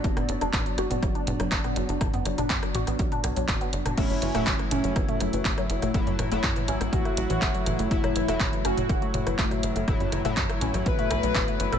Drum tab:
CC |----------------|----------------|x---------------|----------------|
HH |xxxxxxxxxxxxxxxx|xxxxxxxxxxxxxxxx|xxxxxxxxxxxxxxxx|xxxxxxxxxxxxxxxx|
CP |----x-------x---|----x-------x---|----x-------x---|----x-------x---|
SD |-r-r--r-r--r-r--|r-r--r-r--r-r--r|r--r-r--r-r--r-r|--r-r--r-r--r-r-|
T2 |-o--o--o--o--o--|o--o--o--o--o--o|o--o--o--o--o--o|--o--o--o--o--o-|
BD |o---o---o---o---|o---o---o---o---|o---o---o---o---|o---o---o---o---|

CC |----------------|----------------|
HH |xxxxxxxxxxxxxxxx|xxxxxxxxxxxxxxxx|
CP |----x-------x---|----x-------x---|
SD |-r-r--r-r--r-r--|r-r--r-r--r-r--r|
T2 |-o--o--o--o--o--|o--o--o--o--o--o|
BD |o---o---o---o---|o---o---o---o---|